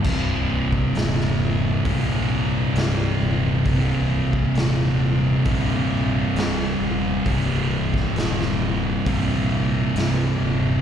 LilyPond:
<<
  \new Staff \with { instrumentName = "Distorted electric guitar" } { \clef bass \time 4/4 \key c \minor \tempo 4 = 67 <c, g, c>2 <c, g, c>2 | <c, g, c>2 <c, g, c>2 | <c, g, c>2 <c, g, c>2 | }
  \new Staff \with { instrumentName = "Distorted electric guitar" } { \clef bass \time 4/4 \key c \minor <c, g, c>2 <c, g, c>2 | <c, g, c>2 <c, g, c>2 | <c, g, c>2 <c, g, c>2 | }
  \new Staff \with { instrumentName = "Fingered electric bass" } { \clef bass \time 4/4 \key c \minor c,,4 ees,,4 bes,,4 c,,8 ees,,8 | c,,4 ees,,4 bes,,4 c,,8 ees,,8 | c,,4 ees,,4 bes,,4 c,,8 ees,,8 | }
  \new DrumStaff \with { instrumentName = "Drums" } \drummode { \time 4/4 <cymc bd>8. bd16 <hho sn>16 sn8. <hho bd>4 <hho sn>4 | <hho bd>8. bd16 <hho sn>4 <hho bd>4 <hho sn>4 | <hho bd>8. <bd sn>16 <hho sn>16 sn8. <hho bd>4 <hho sn>4 | }
>>